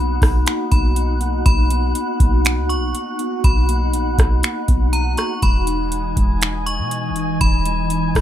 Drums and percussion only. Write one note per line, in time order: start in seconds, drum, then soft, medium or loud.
0.22 kick loud
0.22 cross-stick loud
0.22 open hi-hat medium
0.46 finger snap loud
0.46 closed hi-hat medium
0.72 kick loud
0.72 closed hi-hat medium
0.96 closed hi-hat medium
1.21 closed hi-hat medium
1.46 kick loud
1.46 closed hi-hat medium
1.70 closed hi-hat medium
1.95 closed hi-hat medium
2.20 kick loud
2.20 closed hi-hat medium
2.45 finger snap loud
2.45 closed hi-hat medium
2.70 closed hi-hat medium
2.95 closed hi-hat medium
3.19 closed hi-hat medium
3.44 kick loud
3.44 closed hi-hat medium
3.69 closed hi-hat medium
3.93 closed hi-hat medium
4.18 kick loud
4.18 cross-stick loud
4.18 closed hi-hat medium
4.43 finger snap loud
4.43 closed hi-hat medium
4.68 kick loud
4.68 closed hi-hat medium
4.93 closed hi-hat medium
5.17 cross-stick medium
5.17 closed hi-hat medium
5.42 kick loud
5.42 closed hi-hat medium
5.67 closed hi-hat medium
5.92 closed hi-hat medium
6.17 kick loud
6.17 closed hi-hat medium
6.42 finger snap loud
6.42 closed hi-hat medium
6.67 closed hi-hat medium
6.91 closed hi-hat medium
7.16 closed hi-hat medium
7.41 kick loud
7.41 closed hi-hat medium
7.65 closed hi-hat medium
7.90 closed hi-hat medium
8.15 kick loud
8.15 cross-stick loud
8.15 open hi-hat medium